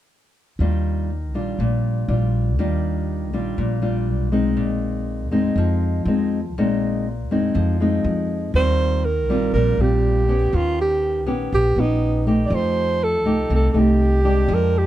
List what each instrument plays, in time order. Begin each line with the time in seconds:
0.59 upright bass D#2, nylon-string guitar D#3 G3 D4 F4
1.34 upright bass A#1, nylon-string guitar G3 D4 F4
1.59 upright bass A#1, nylon-string guitar A#2
2.08 upright bass A#1, nylon-string guitar G3 D4 F4
2.58 upright bass D#2, nylon-string guitar D#3 G3 D4 F4
3.32 upright bass A#1, nylon-string guitar G3 D4 F4
3.58 upright bass A#1, nylon-string guitar A#2
3.82 nylon-string guitar G3 D4 F4
4.08 upright bass B1
4.32 nylon-string guitar G#3 C4 D#4
4.57 upright bass A#1, nylon-string guitar A#2
5.31 upright bass F2, nylon-string guitar G#3 C4 D#4
5.56 upright bass F2, nylon-string guitar F3
6.05 upright bass F2, nylon-string guitar G#3 C4 D#4
6.55 upright bass A#1, nylon-string guitar A#2 G#3 C4 D#4
7.31 upright bass F2, nylon-string guitar G#3 C4 D#4
7.55 upright bass F2, nylon-string guitar F3
7.80 nylon-string guitar G#3 C4 D#4
8.04 upright bass F2
8.54 upright bass D#2, nylon-string guitar D#3 G3 C4 F4, alto saxophone C5
9.05 alto saxophone A#4
9.28 upright bass A#1, nylon-string guitar G3 C4 F4
9.53 upright bass A#1, nylon-string guitar A#2, alto saxophone A#4
9.77 upright bass A#1, nylon-string guitar G3 C4 F4, alto saxophone G4
10.28 nylon-string guitar B3 C#4 G4
10.53 upright bass D#2, nylon-string guitar D#3, alto saxophone F4
10.81 alto saxophone G4
11.26 upright bass A#1, nylon-string guitar B3 C#4 G4
11.52 upright bass A#1, alto saxophone G4
11.76 upright bass A#1, nylon-string guitar B3 C#4 G4, alto saxophone D#4
12.27 nylon-string guitar A3 D#4 G4
12.45 alto saxophone D5
12.50 upright bass F2, nylon-string guitar F3, alto saxophone C5
13.04 alto saxophone A4
13.25 upright bass C2, nylon-string guitar A3 D#4 G4
13.50 upright bass C2, nylon-string guitar C3
13.55 alto saxophone A4
13.71 upright bass C2, nylon-string guitar A3, alto saxophone A4
13.75 nylon-string guitar D#4 G4, alto saxophone G4
14.24 nylon-string guitar G#3 D4 G4
14.48 upright bass F2, nylon-string guitar F3
14.54 alto saxophone A#4
14.78 alto saxophone G4